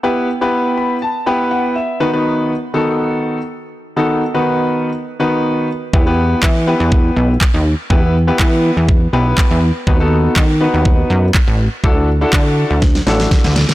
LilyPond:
<<
  \new Staff \with { instrumentName = "Grand piano" } { \time 4/4 \key e \minor \tempo 4 = 122 << { r4. b''8 a''8 g''8 fis''8 e''8 | r1 | r1 | r1 |
r1 | r1 | r1 | } \\ { <b e' g' b'>8 r16 <b e' g' b'>4 r8. <b e' g' b'>4 r8 | <dis b dis' fis' b'>16 <dis b dis' fis' b'>8. r8 <dis b dis' fis' a'>4~ <dis b dis' fis' a'>16 r4 r16 | <dis b dis' fis' a'>8 r16 <dis b dis' fis' b'>4 r8. <dis b dis' fis' b'>4 r8 | <b e' g' b'>16 <b e' g' b'>8. r8 <b e' g' b'>4~ <b e' g' b'>16 r4 r16 |
<b e' g' b'>8 r16 <b e' g' b'>4 r8. <b e' g' b'>4 r8 | <b dis' fis' b'>16 <b dis' fis' a'>8. r8 <b dis' fis' b'>4~ <b dis' fis' b'>16 r4 r16 | <d' e' fis' a'>8 r16 <d' e' fis' a'>4 r8. <d' e' fis' a'>4 r8 | } >> }
  \new Staff \with { instrumentName = "Analog synth bass" } { \clef bass \time 4/4 \key e \minor r1 | r1 | r1 | e,4 e8. e,8. b,,8 r16 dis,8 r16 |
e,4 e8. e,8. b,,8 r16 e,8 r16 | dis,4 dis8. dis,8. fis,8 r16 a,,8 r16 | d,4 d8. d,8. a,,8 r16 d,8 r16 | }
  \new DrumStaff \with { instrumentName = "Drums" } \drummode { \time 4/4 r4 r4 r4 r4 | r4 r4 r4 r4 | r4 r4 r4 r4 | bd4 <hc bd>4 bd4 <hc bd>4 |
bd4 <hc bd>4 bd4 <hc bd>4 | bd4 <hc bd>4 bd4 <hc bd>4 | bd4 <hc bd>4 <bd sn>16 sn16 sn16 sn16 <bd sn>16 sn16 sn16 sn16 | }
>>